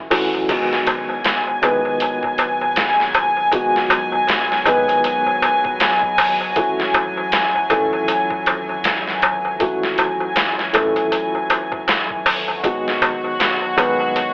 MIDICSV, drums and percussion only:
0, 0, Header, 1, 3, 480
1, 0, Start_track
1, 0, Tempo, 759494
1, 310, Time_signature, 4, 2, 24, 8
1, 9060, End_track
2, 0, Start_track
2, 0, Title_t, "Darbuka"
2, 71, Note_on_c, 9, 63, 82
2, 134, Note_off_c, 9, 63, 0
2, 216, Note_on_c, 9, 63, 33
2, 279, Note_off_c, 9, 63, 0
2, 310, Note_on_c, 9, 63, 49
2, 373, Note_off_c, 9, 63, 0
2, 552, Note_on_c, 9, 63, 84
2, 615, Note_off_c, 9, 63, 0
2, 689, Note_on_c, 9, 63, 39
2, 753, Note_off_c, 9, 63, 0
2, 790, Note_on_c, 9, 63, 44
2, 853, Note_off_c, 9, 63, 0
2, 931, Note_on_c, 9, 63, 38
2, 994, Note_off_c, 9, 63, 0
2, 1029, Note_on_c, 9, 63, 88
2, 1092, Note_off_c, 9, 63, 0
2, 1170, Note_on_c, 9, 63, 37
2, 1233, Note_off_c, 9, 63, 0
2, 1277, Note_on_c, 9, 63, 47
2, 1340, Note_off_c, 9, 63, 0
2, 1417, Note_on_c, 9, 63, 36
2, 1480, Note_off_c, 9, 63, 0
2, 1509, Note_on_c, 9, 63, 79
2, 1572, Note_off_c, 9, 63, 0
2, 1652, Note_on_c, 9, 63, 37
2, 1715, Note_off_c, 9, 63, 0
2, 1747, Note_on_c, 9, 63, 48
2, 1810, Note_off_c, 9, 63, 0
2, 1989, Note_on_c, 9, 63, 97
2, 2052, Note_off_c, 9, 63, 0
2, 2127, Note_on_c, 9, 63, 34
2, 2190, Note_off_c, 9, 63, 0
2, 2222, Note_on_c, 9, 63, 50
2, 2285, Note_off_c, 9, 63, 0
2, 2465, Note_on_c, 9, 63, 98
2, 2529, Note_off_c, 9, 63, 0
2, 2605, Note_on_c, 9, 63, 41
2, 2669, Note_off_c, 9, 63, 0
2, 2701, Note_on_c, 9, 63, 45
2, 2765, Note_off_c, 9, 63, 0
2, 2846, Note_on_c, 9, 63, 32
2, 2909, Note_off_c, 9, 63, 0
2, 2942, Note_on_c, 9, 63, 88
2, 3005, Note_off_c, 9, 63, 0
2, 3086, Note_on_c, 9, 63, 41
2, 3149, Note_off_c, 9, 63, 0
2, 3187, Note_on_c, 9, 63, 46
2, 3251, Note_off_c, 9, 63, 0
2, 3327, Note_on_c, 9, 63, 44
2, 3391, Note_off_c, 9, 63, 0
2, 3428, Note_on_c, 9, 63, 82
2, 3491, Note_off_c, 9, 63, 0
2, 3566, Note_on_c, 9, 63, 34
2, 3629, Note_off_c, 9, 63, 0
2, 3667, Note_on_c, 9, 63, 52
2, 3731, Note_off_c, 9, 63, 0
2, 3907, Note_on_c, 9, 63, 95
2, 3970, Note_off_c, 9, 63, 0
2, 4048, Note_on_c, 9, 63, 41
2, 4111, Note_off_c, 9, 63, 0
2, 4147, Note_on_c, 9, 63, 48
2, 4210, Note_off_c, 9, 63, 0
2, 4389, Note_on_c, 9, 63, 105
2, 4452, Note_off_c, 9, 63, 0
2, 4534, Note_on_c, 9, 63, 44
2, 4597, Note_off_c, 9, 63, 0
2, 4634, Note_on_c, 9, 63, 46
2, 4697, Note_off_c, 9, 63, 0
2, 4771, Note_on_c, 9, 63, 38
2, 4834, Note_off_c, 9, 63, 0
2, 4866, Note_on_c, 9, 63, 85
2, 4930, Note_off_c, 9, 63, 0
2, 5011, Note_on_c, 9, 63, 41
2, 5074, Note_off_c, 9, 63, 0
2, 5107, Note_on_c, 9, 63, 57
2, 5170, Note_off_c, 9, 63, 0
2, 5248, Note_on_c, 9, 63, 35
2, 5311, Note_off_c, 9, 63, 0
2, 5353, Note_on_c, 9, 63, 84
2, 5417, Note_off_c, 9, 63, 0
2, 5493, Note_on_c, 9, 63, 36
2, 5556, Note_off_c, 9, 63, 0
2, 5594, Note_on_c, 9, 63, 51
2, 5657, Note_off_c, 9, 63, 0
2, 5833, Note_on_c, 9, 63, 96
2, 5896, Note_off_c, 9, 63, 0
2, 5972, Note_on_c, 9, 63, 39
2, 6035, Note_off_c, 9, 63, 0
2, 6069, Note_on_c, 9, 63, 49
2, 6132, Note_off_c, 9, 63, 0
2, 6312, Note_on_c, 9, 63, 82
2, 6375, Note_off_c, 9, 63, 0
2, 6449, Note_on_c, 9, 63, 41
2, 6512, Note_off_c, 9, 63, 0
2, 6545, Note_on_c, 9, 63, 54
2, 6609, Note_off_c, 9, 63, 0
2, 6687, Note_on_c, 9, 63, 35
2, 6750, Note_off_c, 9, 63, 0
2, 6792, Note_on_c, 9, 63, 98
2, 6855, Note_off_c, 9, 63, 0
2, 6926, Note_on_c, 9, 63, 38
2, 6989, Note_off_c, 9, 63, 0
2, 7027, Note_on_c, 9, 63, 53
2, 7090, Note_off_c, 9, 63, 0
2, 7172, Note_on_c, 9, 63, 37
2, 7235, Note_off_c, 9, 63, 0
2, 7269, Note_on_c, 9, 63, 88
2, 7332, Note_off_c, 9, 63, 0
2, 7405, Note_on_c, 9, 63, 37
2, 7468, Note_off_c, 9, 63, 0
2, 7506, Note_on_c, 9, 63, 58
2, 7569, Note_off_c, 9, 63, 0
2, 7747, Note_on_c, 9, 63, 93
2, 7811, Note_off_c, 9, 63, 0
2, 7888, Note_on_c, 9, 63, 43
2, 7951, Note_off_c, 9, 63, 0
2, 7986, Note_on_c, 9, 63, 48
2, 8049, Note_off_c, 9, 63, 0
2, 8229, Note_on_c, 9, 63, 93
2, 8292, Note_off_c, 9, 63, 0
2, 8369, Note_on_c, 9, 63, 35
2, 8432, Note_off_c, 9, 63, 0
2, 8467, Note_on_c, 9, 63, 51
2, 8530, Note_off_c, 9, 63, 0
2, 8609, Note_on_c, 9, 63, 34
2, 8672, Note_off_c, 9, 63, 0
2, 8706, Note_on_c, 9, 63, 91
2, 8770, Note_off_c, 9, 63, 0
2, 8846, Note_on_c, 9, 63, 36
2, 8910, Note_off_c, 9, 63, 0
2, 8948, Note_on_c, 9, 63, 50
2, 9011, Note_off_c, 9, 63, 0
2, 9060, End_track
3, 0, Start_track
3, 0, Title_t, "Drums"
3, 70, Note_on_c, 9, 46, 79
3, 134, Note_off_c, 9, 46, 0
3, 309, Note_on_c, 9, 36, 109
3, 310, Note_on_c, 9, 42, 88
3, 310, Note_on_c, 9, 49, 94
3, 373, Note_off_c, 9, 36, 0
3, 373, Note_off_c, 9, 42, 0
3, 373, Note_off_c, 9, 49, 0
3, 460, Note_on_c, 9, 38, 49
3, 523, Note_off_c, 9, 38, 0
3, 547, Note_on_c, 9, 42, 71
3, 549, Note_on_c, 9, 36, 93
3, 611, Note_off_c, 9, 42, 0
3, 612, Note_off_c, 9, 36, 0
3, 786, Note_on_c, 9, 42, 90
3, 793, Note_on_c, 9, 38, 114
3, 850, Note_off_c, 9, 42, 0
3, 857, Note_off_c, 9, 38, 0
3, 1028, Note_on_c, 9, 42, 65
3, 1091, Note_off_c, 9, 42, 0
3, 1265, Note_on_c, 9, 42, 90
3, 1328, Note_off_c, 9, 42, 0
3, 1408, Note_on_c, 9, 36, 89
3, 1471, Note_off_c, 9, 36, 0
3, 1505, Note_on_c, 9, 42, 64
3, 1568, Note_off_c, 9, 42, 0
3, 1745, Note_on_c, 9, 42, 94
3, 1752, Note_on_c, 9, 38, 116
3, 1809, Note_off_c, 9, 42, 0
3, 1815, Note_off_c, 9, 38, 0
3, 1897, Note_on_c, 9, 38, 37
3, 1960, Note_off_c, 9, 38, 0
3, 1987, Note_on_c, 9, 42, 66
3, 2050, Note_off_c, 9, 42, 0
3, 2227, Note_on_c, 9, 42, 94
3, 2228, Note_on_c, 9, 36, 111
3, 2290, Note_off_c, 9, 42, 0
3, 2291, Note_off_c, 9, 36, 0
3, 2377, Note_on_c, 9, 38, 45
3, 2440, Note_off_c, 9, 38, 0
3, 2469, Note_on_c, 9, 42, 70
3, 2532, Note_off_c, 9, 42, 0
3, 2708, Note_on_c, 9, 42, 88
3, 2715, Note_on_c, 9, 38, 114
3, 2771, Note_off_c, 9, 42, 0
3, 2778, Note_off_c, 9, 38, 0
3, 2856, Note_on_c, 9, 38, 43
3, 2919, Note_off_c, 9, 38, 0
3, 2948, Note_on_c, 9, 42, 63
3, 3011, Note_off_c, 9, 42, 0
3, 3090, Note_on_c, 9, 42, 43
3, 3153, Note_off_c, 9, 42, 0
3, 3186, Note_on_c, 9, 42, 87
3, 3249, Note_off_c, 9, 42, 0
3, 3428, Note_on_c, 9, 42, 65
3, 3491, Note_off_c, 9, 42, 0
3, 3569, Note_on_c, 9, 36, 102
3, 3632, Note_off_c, 9, 36, 0
3, 3666, Note_on_c, 9, 42, 92
3, 3673, Note_on_c, 9, 38, 122
3, 3729, Note_off_c, 9, 42, 0
3, 3736, Note_off_c, 9, 38, 0
3, 3808, Note_on_c, 9, 36, 101
3, 3871, Note_off_c, 9, 36, 0
3, 3906, Note_on_c, 9, 46, 80
3, 3970, Note_off_c, 9, 46, 0
3, 4146, Note_on_c, 9, 42, 95
3, 4147, Note_on_c, 9, 36, 109
3, 4209, Note_off_c, 9, 42, 0
3, 4210, Note_off_c, 9, 36, 0
3, 4296, Note_on_c, 9, 38, 50
3, 4359, Note_off_c, 9, 38, 0
3, 4388, Note_on_c, 9, 36, 102
3, 4388, Note_on_c, 9, 42, 69
3, 4451, Note_off_c, 9, 36, 0
3, 4451, Note_off_c, 9, 42, 0
3, 4626, Note_on_c, 9, 42, 92
3, 4633, Note_on_c, 9, 38, 118
3, 4690, Note_off_c, 9, 42, 0
3, 4697, Note_off_c, 9, 38, 0
3, 4868, Note_on_c, 9, 42, 65
3, 4931, Note_off_c, 9, 42, 0
3, 5108, Note_on_c, 9, 42, 87
3, 5171, Note_off_c, 9, 42, 0
3, 5248, Note_on_c, 9, 36, 88
3, 5312, Note_off_c, 9, 36, 0
3, 5348, Note_on_c, 9, 42, 65
3, 5412, Note_off_c, 9, 42, 0
3, 5587, Note_on_c, 9, 42, 97
3, 5594, Note_on_c, 9, 38, 117
3, 5651, Note_off_c, 9, 42, 0
3, 5658, Note_off_c, 9, 38, 0
3, 5735, Note_on_c, 9, 38, 38
3, 5798, Note_off_c, 9, 38, 0
3, 5829, Note_on_c, 9, 42, 66
3, 5892, Note_off_c, 9, 42, 0
3, 6068, Note_on_c, 9, 36, 116
3, 6068, Note_on_c, 9, 42, 90
3, 6131, Note_off_c, 9, 36, 0
3, 6131, Note_off_c, 9, 42, 0
3, 6215, Note_on_c, 9, 38, 44
3, 6278, Note_off_c, 9, 38, 0
3, 6307, Note_on_c, 9, 42, 65
3, 6370, Note_off_c, 9, 42, 0
3, 6546, Note_on_c, 9, 42, 90
3, 6553, Note_on_c, 9, 38, 120
3, 6610, Note_off_c, 9, 42, 0
3, 6617, Note_off_c, 9, 38, 0
3, 6694, Note_on_c, 9, 38, 44
3, 6757, Note_off_c, 9, 38, 0
3, 6786, Note_on_c, 9, 42, 67
3, 6849, Note_off_c, 9, 42, 0
3, 6928, Note_on_c, 9, 42, 41
3, 6991, Note_off_c, 9, 42, 0
3, 7028, Note_on_c, 9, 42, 88
3, 7091, Note_off_c, 9, 42, 0
3, 7267, Note_on_c, 9, 42, 65
3, 7330, Note_off_c, 9, 42, 0
3, 7409, Note_on_c, 9, 36, 102
3, 7472, Note_off_c, 9, 36, 0
3, 7507, Note_on_c, 9, 42, 88
3, 7514, Note_on_c, 9, 38, 123
3, 7570, Note_off_c, 9, 42, 0
3, 7577, Note_off_c, 9, 38, 0
3, 7649, Note_on_c, 9, 36, 97
3, 7712, Note_off_c, 9, 36, 0
3, 7749, Note_on_c, 9, 46, 82
3, 7812, Note_off_c, 9, 46, 0
3, 7987, Note_on_c, 9, 36, 113
3, 7988, Note_on_c, 9, 42, 89
3, 8050, Note_off_c, 9, 36, 0
3, 8052, Note_off_c, 9, 42, 0
3, 8139, Note_on_c, 9, 38, 53
3, 8202, Note_off_c, 9, 38, 0
3, 8227, Note_on_c, 9, 36, 100
3, 8228, Note_on_c, 9, 42, 68
3, 8290, Note_off_c, 9, 36, 0
3, 8291, Note_off_c, 9, 42, 0
3, 8469, Note_on_c, 9, 42, 90
3, 8476, Note_on_c, 9, 38, 116
3, 8532, Note_off_c, 9, 42, 0
3, 8539, Note_off_c, 9, 38, 0
3, 8710, Note_on_c, 9, 42, 65
3, 8773, Note_off_c, 9, 42, 0
3, 8948, Note_on_c, 9, 42, 90
3, 9011, Note_off_c, 9, 42, 0
3, 9060, End_track
0, 0, End_of_file